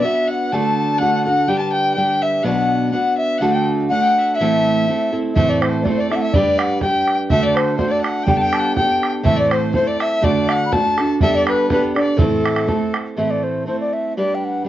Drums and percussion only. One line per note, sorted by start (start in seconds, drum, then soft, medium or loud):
5.36 bodhran medium
5.62 bodhran medium
5.85 bodhran medium
6.11 bodhran soft
6.33 bodhran medium
6.59 bodhran medium
6.81 bodhran medium
7.07 bodhran soft
7.30 bodhran medium
7.57 bodhran medium
7.79 bodhran medium
8.04 bodhran soft
8.28 bodhran medium
8.53 bodhran medium
8.77 bodhran medium
9.03 bodhran soft
9.25 bodhran medium
9.51 bodhran medium
9.74 bodhran medium
10.00 bodhran soft
10.24 bodhran medium
10.49 bodhran medium
10.73 bodhran medium
10.98 bodhran soft
11.21 bodhran medium
11.47 bodhran medium
11.70 bodhran medium
11.97 bodhran soft
12.19 bodhran medium
12.46 bodhran medium
12.56 bodhran medium
12.68 bodhran medium
12.94 bodhran medium